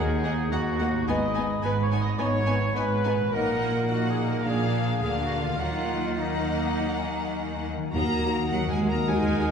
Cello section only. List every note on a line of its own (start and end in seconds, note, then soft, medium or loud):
0.00 0.46 D#2 medium
0.53 1.01 D#2 medium
1.09 1.57 G#2 medium
1.64 2.13 G#2 medium
2.20 2.69 G#2 medium
2.77 3.26 G#2 medium
3.33 4.41 A#2 medium
4.46 5.01 A#2 medium
5.02 5.59 D3 soft
5.61 7.71 D#3 soft
7.95 8.48 A#3 medium
8.52 8.71 F#3 medium
8.72 8.90 G#3 medium
8.91 9.09 A#3 medium
9.09 9.51 G#3 medium